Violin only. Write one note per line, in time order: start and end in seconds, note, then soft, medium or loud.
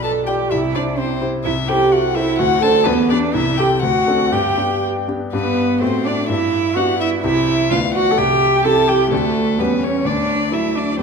0.03 0.11 A5 soft
0.27 0.35 G5 medium
0.51 0.59 E5 soft
0.75 0.83 D5 soft
0.98 1.21 C5 soft
1.44 1.70 E5 medium
1.68 1.94 G5 medium
1.92 2.16 F#5 medium
2.15 2.38 E5 medium
2.39 2.64 F#5 medium
2.62 2.87 A5 medium
2.85 3.09 B4 medium
3.10 3.18 D5 medium
3.34 3.59 E5 medium
3.58 3.82 G5 medium
3.82 4.34 F#5 medium
4.32 4.83 G5 medium
5.33 5.78 B4 medium
5.81 6.08 C5 medium
6.06 6.29 D5 medium
6.29 6.78 E5 medium
6.77 7.00 F#5 medium
7.01 7.09 E5 medium
7.24 7.73 E5 medium
7.72 7.94 F5 medium
7.95 8.19 F#5 medium
8.18 8.65 G5 medium
8.65 8.90 A5 medium
8.89 9.12 G5 medium
9.13 9.61 A4 medium
9.60 9.85 B4 medium
9.84 10.08 C#5 medium
10.06 10.55 D5 medium
10.53 10.79 E5 medium
10.77 10.99 D5 medium